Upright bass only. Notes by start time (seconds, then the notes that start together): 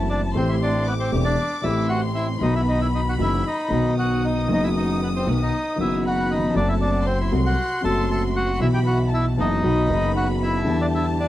Already playing: F#1
0.35 A1
1.12 E1
1.64 A1
2.41 B1
3.19 F#1
3.70 B1
4.49 F#1
5.27 B1
5.78 F#1
6.55 F#1
7.32 C2
7.84 F#1
8.61 B1
9.38 F#1
9.63 B1
9.89 F#1
10.66 E2